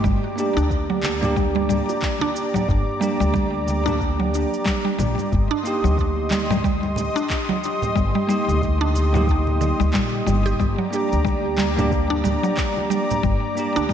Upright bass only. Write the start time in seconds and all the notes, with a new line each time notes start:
0.04 G1
0.57 D2
2.69 G1
3.20 D2
4.99 A#1
5.32 G1
5.84 D2
7.96 G1
8.48 D2
9.80 D2
9.94 A#1
10.27 G1
10.60 G1
11.13 D2
13.24 G1
13.76 D2